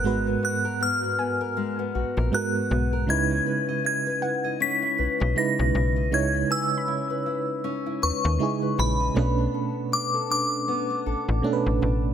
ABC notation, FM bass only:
X:1
M:4/4
L:1/16
Q:"Swing 16ths" 1/4=79
K:Dbdor
V:1 name="FM bass" clef=bass
A,,,2 z8 B,,, B,,, z2 C,,2 | D,,2 z8 C,, C,, z C,, C,,2 | D,,2 z8 E,, E,, z2 B,,,2 | =B,,,2 z8 =A,,, A,,, z A,,, A,,,2 |]